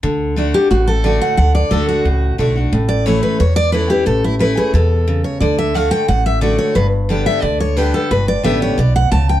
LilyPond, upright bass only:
\new Staff \with { instrumentName = "Upright bass" } { \clef bass \time 4/4 \key d \major \tempo 4 = 178 d,2 a,,2 | d,4 d,4 cis,4 b,,4 | a,,2 e,2 | a,,2 e,2 |
d,2 a,,2 | g,,2 d,2 | g,,4 a,,4 b,,4 cis,4 | }